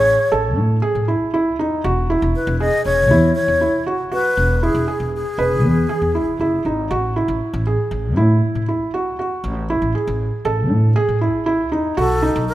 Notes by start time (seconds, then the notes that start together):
Already playing: A1 G#4 C#5
0.32 A1 A4
0.58 A2
0.82 G#4
0.95 A2
1.08 E4
1.21 A1
1.34 E4
1.58 E2 D#4
1.84 E1 F#4
2.10 E4
2.22 E1
2.36 B4
2.47 E1
2.60 G#4 D#5
2.85 E1 C#5
3.10 E2 E4
3.35 C#5
3.48 E2
3.61 E4
3.73 E1
3.86 F#4
4.12 B1 F#4 B4
4.37 E1
4.63 E4 G#4
4.75 E1
4.88 G#4
5.00 E1
5.16 G#4
5.38 E1 B4
5.63 E2
5.89 G#4
6.02 E2
6.15 E4
6.27 E1
6.39 F#1 E4
6.65 G#1 D#4
6.91 A1 F#4
7.16 E4
7.28 A1
7.54 A1
7.67 G#4
7.91 A1
8.17 A2 E4
8.55 A2
8.68 E4
8.81 A1
8.94 F#4
9.19 E2 F#4
9.44 A1
9.70 E4
9.82 A1
9.95 G#4
10.07 A1
10.45 A1 A4
10.70 A2
10.96 G#4
11.09 A2
11.21 E4
11.34 A1
11.46 E4
11.72 E2 D#4
11.97 B1 F#4 A4
12.22 D#4
12.36 B1
12.48 B4